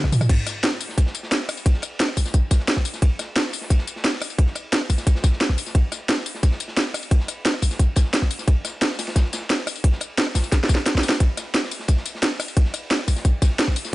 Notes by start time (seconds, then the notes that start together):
0.04 kick, cross-stick, snare
0.12 mid tom, open hi-hat, tambourine
0.21 cross-stick, mid tom, tambourine
0.29 kick, closed hi-hat, crash, ride
0.46 cross-stick, snare, closed hi-hat, ride, tambourine
0.63 snare, closed hi-hat, ride
0.72 snare
0.80 open hi-hat, ride, tambourine
0.89 snare
0.98 kick, closed hi-hat, ride, tambourine
1.06 snare
1.15 closed hi-hat, ride, tambourine
1.23 snare
1.31 snare, closed hi-hat
1.40 snare
1.49 cross-stick, open hi-hat, ride, tambourine
1.57 ride, tambourine
1.66 kick, closed hi-hat, ride
1.74 snare
1.82 cross-stick, closed hi-hat, ride, tambourine
2.00 snare, closed hi-hat, ride
2.08 cross-stick
2.17 kick, open hi-hat, ride, tambourine
2.25 snare, tambourine
2.34 kick, closed hi-hat, tambourine
2.51 kick, snare, closed hi-hat, ride, tambourine
2.59 snare
2.68 snare, closed hi-hat, ride
2.76 kick, snare
2.85 open hi-hat, ride, tambourine
2.94 snare, tambourine
3.02 kick, closed hi-hat, ride
3.19 cross-stick, snare, closed hi-hat, ride, tambourine
3.36 snare, closed hi-hat, ride
3.45 snare
3.53 open hi-hat, ride, tambourine
3.61 snare
3.70 kick, closed hi-hat, ride, tambourine
3.78 snare
3.87 closed hi-hat, ride, tambourine
3.96 snare
4.04 snare, closed hi-hat, ride
4.13 snare
4.20 cross-stick, open hi-hat, ride, tambourine
4.30 ride, tambourine
4.38 kick, closed hi-hat, ride
4.46 snare
4.55 cross-stick, closed hi-hat, ride, tambourine
4.72 snare, closed hi-hat, ride
4.81 cross-stick
4.90 kick, open hi-hat, ride, tambourine
4.98 snare, tambourine
5.07 kick, closed hi-hat, ride, tambourine
5.15 snare
5.22 kick, snare, closed hi-hat, ride, tambourine
5.32 snare
5.41 snare, closed hi-hat, ride
5.49 kick, snare
5.58 open hi-hat, ride, tambourine
5.66 snare, tambourine
5.75 kick, closed hi-hat, ride
5.92 cross-stick, snare, closed hi-hat, ride, tambourine
6.09 snare, closed hi-hat, ride
6.17 snare
6.26 open hi-hat, ride, tambourine
6.35 snare
6.43 kick, closed hi-hat, ride, tambourine
6.51 snare
6.60 closed hi-hat, ride, tambourine
6.68 snare
6.77 snare, closed hi-hat, ride
6.86 snare
6.94 cross-stick, open hi-hat, ride, tambourine
7.03 ride, tambourine
7.11 kick, closed hi-hat, ride
7.20 snare
7.28 cross-stick, closed hi-hat, ride, tambourine
7.45 snare, closed hi-hat, ride
7.54 cross-stick
7.62 kick, open hi-hat, ride, tambourine
7.71 snare, tambourine
7.79 kick, closed hi-hat, tambourine
7.96 kick, snare, closed hi-hat, ride, tambourine
8.05 snare
8.14 snare, closed hi-hat, ride
8.22 kick, snare
8.31 open hi-hat, ride, tambourine
8.39 snare, tambourine
8.48 kick, closed hi-hat, ride
8.65 cross-stick, snare, closed hi-hat, ride, tambourine
8.81 snare, closed hi-hat, ride
8.90 snare
8.99 snare, open hi-hat, ride, tambourine
9.07 snare, ride
9.16 kick, snare, closed hi-hat, ride, tambourine
9.24 snare
9.33 snare, closed hi-hat, ride, tambourine
9.42 snare
9.50 snare, closed hi-hat, ride
9.58 snare
9.67 cross-stick, open hi-hat, ride, tambourine
9.75 ride, tambourine
9.84 kick, closed hi-hat, ride
9.92 snare
10.00 cross-stick, closed hi-hat, ride, tambourine
10.18 snare, closed hi-hat, ride
10.27 cross-stick
10.35 kick, snare, open hi-hat, ride, tambourine
10.43 snare, tambourine
10.52 kick, snare, closed hi-hat, ride, tambourine
10.64 snare
10.69 kick, snare, closed hi-hat, ride, tambourine
10.75 snare, ride
10.86 snare, closed hi-hat
10.95 kick, snare, ride
10.98 snare
11.03 snare, open hi-hat, ride, tambourine
11.09 snare, ride, tambourine
11.12 snare
11.20 kick, closed hi-hat, ride
11.37 cross-stick, snare, closed hi-hat, ride, tambourine
11.54 snare, closed hi-hat, ride
11.63 snare
11.71 open hi-hat, ride, tambourine
11.79 snare
11.88 kick, closed hi-hat, ride, tambourine
11.97 snare
12.06 closed hi-hat, ride, tambourine
12.15 snare
12.22 snare, closed hi-hat, ride
12.31 snare
12.40 cross-stick, open hi-hat, ride, tambourine
12.48 ride, tambourine
12.57 kick, closed hi-hat, ride
12.65 snare
12.74 cross-stick, closed hi-hat, ride, tambourine
12.91 snare, closed hi-hat, ride
12.99 cross-stick
13.08 kick, open hi-hat, ride, tambourine
13.16 snare, tambourine
13.25 kick, closed hi-hat, tambourine
13.42 kick, snare, closed hi-hat, ride, tambourine
13.50 snare
13.59 snare, closed hi-hat, ride
13.68 kick, snare
13.76 open hi-hat, ride, tambourine
13.85 snare, tambourine